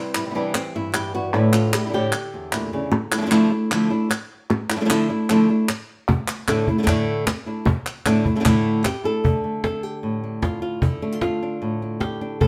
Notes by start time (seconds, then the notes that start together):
Already playing: C3 E3 G3 C4 E4
0.15 G3 B3 E4, clap
0.25 E3 G3 B3 E4
0.30 E3 G3 B3 E4
0.34 C3 E3 G3 B3 D4 E4
0.54 C4, muted nylon-string guitar stroke, clap
0.75 G2 E4
0.93 G3 B3 E4 G4, clap
1.13 E3 G3 B3 E4 F#4
1.33 A2 D3 A3 D4 E4, clap
1.53 F4, clap
1.73 A3 D4 E4 G4, clap
1.84 D3 A3 D4 E4
1.89 D3 A3 D4 E4
1.93 A2 D3 A3 D4 E4 G4
2.12 muted nylon-string guitar stroke, clap
2.34 E2
2.52 A#2 A3 D4 E4, clap
2.72 C#3 D3 A3 D4 E4
2.92 muted nylon-string guitar stroke
3.11 A3 D4 E4, clap
3.17 F3 A3 D4 E4
3.22 F3 A3 D4 E4
3.26 F3 A3 D4 E4
3.31 D3 F3 A3 D4 E4, clap
3.50 A3 D4 E4
3.71 D3 F3 A3 D4 E4, clap
3.90 A3 D4 E4
4.10 muted nylon-string guitar stroke, clap
4.50 muted nylon-string guitar stroke, clap
4.70 A3 D4 E4, clap
4.76 F3 A3 D4 E4
4.81 F3 A3 D4 E4
4.85 F3 A3 D4 E4
4.89 D3 F3 A3 D4 E4, clap
5.09 A3 D4 E4
5.29 D3 F3 A3 D4 E4, clap
5.49 A3 D4 E4
5.69 muted nylon-string guitar stroke, clap
6.09 muted nylon-string guitar stroke, cajon bass
6.28 clap
6.48 A2 D3 A3 D4 E4, cajon slap, clap
6.67 A3 D4 E4, cajon bass
6.78 D3 A3 D4 E4
6.83 D3 A3 D4 E4
6.87 A2 D3 A3 D4 E4, cajon bass, cajon slap, clap
7.07 cajon slap
7.26 muted nylon-string guitar stroke, cajon slap, clap
7.46 A3 D4 E4
7.65 muted nylon-string guitar stroke, cajon bass, clap
7.86 cajon slap, clap
8.05 A2 D3 A3 D4 E4, cajon slap, clap
8.25 A3 D4 E4, cajon bass
8.36 D3 A3 D4 E4
8.40 D3 A3 D4 E4
8.45 A2 D3 A3 D4 E4, cajon bass, clap
8.85 G4, muted nylon-string guitar stroke, cajon slap, clap
9.04 A3 D4 E4 A4
9.24 D3 A3 D4, cajon bass
9.44 A3
9.64 A4, cajon slap
9.83 G4
10.03 A2
10.24 D4
10.42 F4, cajon bass, cajon slap
10.62 F4
10.82 D3 E4, cajon bass
11.02 A3 D4, cajon slap
11.12 F4
11.21 F4, cajon slap
11.43 D4
11.62 A2
11.82 D4, cajon slap
12.00 G4, cajon slap
12.21 D4
12.40 A2 A4, cajon bass